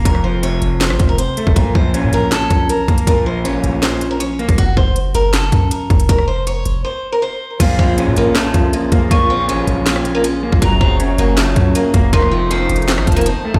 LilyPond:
<<
  \new Staff \with { instrumentName = "Flute" } { \time 4/4 \key bes \minor \tempo 4 = 159 r1 | r1 | r1 | r1 |
r1 | f''4 r2. | des'''4 r2. | bes''4 r2. |
c'''4 r4. a''4. | }
  \new Staff \with { instrumentName = "Steel-string acoustic guitar" } { \time 4/4 \key bes \minor bes'8 c''8 des''4 c''8. bes'16 c''4 | bes'8 c''8 r8 bes'8 a'4 bes'4 | bes'8 c''8 des''4 c''8. bes'16 des''4 | ges'8 c''8 r8 bes'8 a'4 bes'4 |
bes'8 c''8 des''4 c''8. bes'16 c''4 | bes8 c'8 r8 bes8 a4 bes4 | bes8 c'8 des'4 c'8. bes16 des'4 | ges8 c'8 r8 bes8 a4 bes4 |
bes8 c'8 des'4 c'8. bes16 c'4 | }
  \new Staff \with { instrumentName = "Accordion" } { \clef bass \time 4/4 \key bes \minor << { r1 | r1 | r1 | r1 |
r1 | <f f'>1~ | <f f'>1 | <ges ges'>1 |
<f ees'>1 | } \\ { r1 | r1 | r1 | r1 |
r1 | <bes, des>1~ | <bes, des>1~ | <bes, des>1 |
<ees a>1 | } >> }
  \new Staff \with { instrumentName = "Clean electric guitar" } { \clef bass \time 4/4 \key bes \minor f,8 f8 c2~ c8 a8 | bes,8 f8 des'2~ des'8 bes8 | bes,8 f8 des'2~ des'8 bes8 | r1 |
r1 | bes,8 f8 des'2~ des'8 bes8 | bes,8 f8 des'2~ des'8 bes8 | ges,8 ges8 des'2~ des'8 bes8 |
f,8 f8 c''2~ c''8 a8 | }
  \new Staff \with { instrumentName = "808-style bass" } { \clef bass \time 4/4 \key bes \minor f,,4. f,,8. a,,16 f,,8. r8 f,,16 | bes,,8 bes,,8. bes,16 bes,,4 bes,,4 bes,,8 | bes,,4 a,,16 bes,,16 bes,,2~ bes,,16 bes,,16 | ges,,8 ges,,4 ges,,4 ges,4 ges,,8 |
f,,4. f,,8 r2 | bes,,8 bes,,8. bes,16 bes,,4 bes,,4 bes,,8 | bes,,4 a,,16 bes,,16 bes,,2~ bes,,16 bes,,16 | ges,,8 ges,,4 ges,,4 ges,4 ges,,8 |
f,,4. f,,8. a,,16 f,,8. r8 f,,16 | }
  \new DrumStaff \with { instrumentName = "Drums" } \drummode { \time 4/4 <hh bd>16 ss8. hh8 hh8 <hc hh sn>16 ss16 <hh bd>8 hh8 hh16 bd16 | <hh bd>8 bd8 hh8 hh8 <hc hh sn>8 <hh bd>8 hh8 <hh bd>16 hh16 | <hh bd>4 hh8 hh8 <hc hh sn>8 hh8 hh8 hh16 <hh bd>16 | <hh bd>8 bd8 hh8 hh8 <hc hh sn>8 <hh bd>8 hh8 <hh bd>16 hh16 |
<hh bd>16 ss8. hh8 hh8 r4 r4 | <cymc hh bd>8 bd8 hh8 hh8 <hc hh sn>8 <hh bd>8 hh8 <hh bd>8 | <hh bd>4 hh8 hh8 <hc hh sn>16 ss16 hh8 hh8. bd16 | <hh bd>8 bd8 hh8 hh8 <hc hh sn>8 <hh bd>8 hh8 <hh bd>8 |
<hh bd>16 ss8. \tuplet 3/2 { hh16 r16 r16 <hh hho>16 hh16 hh16 } <hc hh sn>16 ss16 <hh bd>32 hh32 hh32 hh32 hh8. bd16 | }
>>